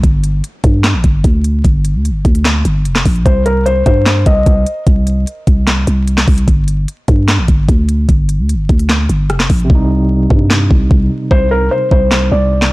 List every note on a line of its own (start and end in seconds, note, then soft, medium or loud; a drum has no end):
0.03 0.42 G1 loud
0.03 kick loud
0.03 closed hi-hat medium
0.24 closed hi-hat medium
0.44 closed hi-hat medium
0.64 0.96 G2 loud
0.64 kick medium
0.64 closed hi-hat medium
0.84 snare loud
0.84 clap loud
0.84 closed hi-hat medium
0.94 1.04 A1 loud
1.04 1.23 G1 loud
1.04 kick medium
1.04 closed hi-hat medium
1.24 1.63 D2 loud
1.24 kick loud
1.24 closed hi-hat medium
1.44 closed hi-hat medium
1.64 1.96 G1 loud
1.64 kick loud
1.64 closed hi-hat medium
1.85 closed hi-hat medium
1.95 2.11 D2 loud
2.05 closed hi-hat medium
2.10 2.24 G1 medium
2.25 2.64 D2 loud
2.25 kick medium
2.25 closed hi-hat soft
2.35 closed hi-hat medium
2.45 snare loud
2.45 clap loud
2.45 closed hi-hat medium
2.65 2.87 G1 loud
2.65 closed hi-hat medium
2.85 3.04 F1 loud
2.85 closed hi-hat medium
2.95 snare loud
2.95 clap medium
3.05 3.25 A#1 loud
3.05 kick medium
3.05 closed hi-hat medium
3.05 open hi-hat medium
3.16 closed hi-hat soft
3.26 3.84 C2 loud
3.26 3.43 C5 medium
3.26 kick loud
3.26 closed hi-hat medium
3.46 3.63 A#4 medium
3.46 closed hi-hat medium
3.66 3.83 C5 medium
3.66 closed hi-hat medium
3.86 4.25 G2 loud
3.86 4.24 C5 medium
3.86 kick medium
3.86 closed hi-hat medium
4.06 snare loud
4.06 clap loud
4.06 closed hi-hat medium
4.26 4.46 C2 loud
4.26 4.83 D#5 medium
4.26 kick medium
4.26 closed hi-hat medium
4.46 4.66 C2 loud
4.46 kick loud
4.46 closed hi-hat medium
4.67 closed hi-hat medium
4.87 5.25 C2 loud
4.87 kick loud
4.87 closed hi-hat medium
5.07 closed hi-hat medium
5.27 closed hi-hat medium
5.47 5.86 C2 loud
5.47 kick medium
5.47 closed hi-hat medium
5.67 snare loud
5.67 clap loud
5.67 closed hi-hat medium
5.87 6.26 C2 loud
5.87 closed hi-hat medium
6.08 closed hi-hat medium
6.18 snare loud
6.18 clap medium
6.28 6.47 C2 loud
6.28 kick medium
6.28 closed hi-hat soft
6.28 open hi-hat medium
6.38 closed hi-hat medium
6.48 6.86 G1 loud
6.48 kick loud
6.48 closed hi-hat medium
6.68 closed hi-hat medium
6.88 closed hi-hat medium
7.08 7.40 G2 loud
7.08 kick medium
7.08 closed hi-hat medium
7.28 snare loud
7.28 clap loud
7.28 closed hi-hat medium
7.38 7.48 A1 loud
7.48 7.68 G1 loud
7.48 kick medium
7.48 closed hi-hat medium
7.69 8.07 D2 loud
7.69 kick loud
7.69 closed hi-hat medium
7.89 closed hi-hat medium
8.09 8.40 G1 loud
8.09 kick loud
8.09 closed hi-hat medium
8.29 closed hi-hat medium
8.39 8.56 D2 loud
8.49 closed hi-hat medium
8.54 8.68 G1 loud
8.69 9.08 D2 loud
8.69 kick medium
8.69 closed hi-hat soft
8.79 closed hi-hat medium
8.89 snare loud
8.89 clap loud
8.89 closed hi-hat medium
9.09 9.31 G1 loud
9.09 closed hi-hat medium
9.30 9.49 F1 loud
9.30 cross-stick medium
9.30 closed hi-hat medium
9.40 snare loud
9.40 clap medium
9.50 9.69 A#1 loud
9.50 kick medium
9.50 closed hi-hat medium
9.50 open hi-hat medium
9.60 closed hi-hat soft
9.65 12.73 C3 medium
9.70 10.28 C2 loud
9.70 12.73 G3 medium
9.70 kick loud
9.75 12.73 D#4 medium
10.30 10.69 G2 loud
10.30 kick medium
10.50 snare loud
10.50 clap loud
10.71 10.90 C2 loud
10.71 kick medium
10.91 11.10 C2 loud
10.91 kick loud
11.31 11.70 C2 loud
11.31 11.48 C5 loud
11.31 kick loud
11.51 11.68 A#4 medium
11.71 11.89 C5 medium
11.91 12.30 C2 loud
11.91 12.29 C5 medium
11.91 kick medium
12.11 snare loud
12.11 clap loud
12.32 12.70 C2 loud
12.32 12.70 D5 medium
12.62 snare medium
12.62 clap medium